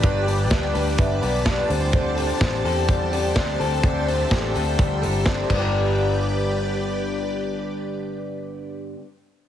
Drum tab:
CC |--------|--------|-------x|--------|
HH |xoxoxo-o|xoxoxoxo|xoxoxox-|--------|
SD |--o---o-|--o---o-|--o---o-|--------|
BD |o-o-o-o-|o-o-o-o-|o-o-o-oo|--------|

CC |--------|
HH |--------|
SD |--------|
BD |--------|